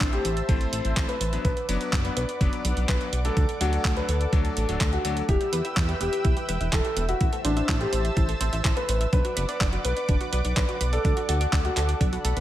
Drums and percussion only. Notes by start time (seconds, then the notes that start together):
0.01 kick, clap, closed hi-hat
0.13 closed hi-hat
0.25 closed hi-hat
0.37 closed hi-hat
0.49 kick, closed hi-hat
0.61 closed hi-hat
0.73 closed hi-hat
0.85 closed hi-hat
0.97 kick, clap, closed hi-hat
1.09 closed hi-hat
1.21 closed hi-hat
1.33 closed hi-hat
1.45 kick, closed hi-hat
1.57 closed hi-hat
1.69 closed hi-hat
1.81 closed hi-hat
1.93 kick, clap, closed hi-hat
2.05 closed hi-hat
2.17 closed hi-hat
2.29 closed hi-hat
2.41 kick, closed hi-hat
2.53 closed hi-hat
2.65 closed hi-hat
2.77 closed hi-hat
2.89 kick, clap, closed hi-hat
3.01 closed hi-hat
3.13 closed hi-hat
3.25 closed hi-hat
3.37 kick, closed hi-hat
3.49 closed hi-hat
3.61 closed hi-hat
3.73 closed hi-hat
3.85 kick, clap, closed hi-hat
3.97 closed hi-hat
4.09 closed hi-hat
4.21 closed hi-hat
4.33 kick, closed hi-hat
4.45 closed hi-hat
4.57 closed hi-hat
4.69 closed hi-hat
4.81 kick, clap, closed hi-hat
4.93 closed hi-hat
5.05 closed hi-hat
5.17 closed hi-hat
5.29 kick, closed hi-hat
5.41 closed hi-hat
5.53 closed hi-hat
5.65 closed hi-hat
5.77 kick, clap, closed hi-hat
5.89 closed hi-hat
6.01 closed hi-hat
6.13 closed hi-hat
6.25 kick, closed hi-hat
6.37 closed hi-hat
6.49 closed hi-hat
6.61 closed hi-hat
6.73 kick, clap, closed hi-hat
6.85 closed hi-hat
6.97 closed hi-hat
7.09 closed hi-hat
7.21 kick, closed hi-hat
7.33 closed hi-hat
7.45 closed hi-hat
7.57 closed hi-hat
7.69 kick, clap, closed hi-hat
7.81 closed hi-hat
7.93 closed hi-hat
8.05 closed hi-hat
8.17 kick, closed hi-hat
8.29 closed hi-hat
8.41 closed hi-hat
8.53 closed hi-hat
8.65 kick, clap, closed hi-hat
8.77 closed hi-hat
8.89 closed hi-hat
9.01 closed hi-hat
9.13 kick, closed hi-hat
9.25 closed hi-hat
9.37 closed hi-hat
9.49 closed hi-hat
9.61 kick, clap, closed hi-hat
9.73 closed hi-hat
9.85 closed hi-hat
9.97 closed hi-hat
10.09 kick, closed hi-hat
10.21 closed hi-hat
10.33 closed hi-hat
10.45 closed hi-hat
10.57 kick, clap, closed hi-hat
10.69 closed hi-hat
10.81 closed hi-hat
10.93 closed hi-hat
11.05 kick, closed hi-hat
11.17 closed hi-hat
11.29 closed hi-hat
11.41 closed hi-hat
11.53 kick, clap, closed hi-hat
11.65 closed hi-hat
11.77 clap, closed hi-hat
11.89 closed hi-hat
12.01 kick, closed hi-hat
12.13 closed hi-hat
12.25 closed hi-hat
12.37 closed hi-hat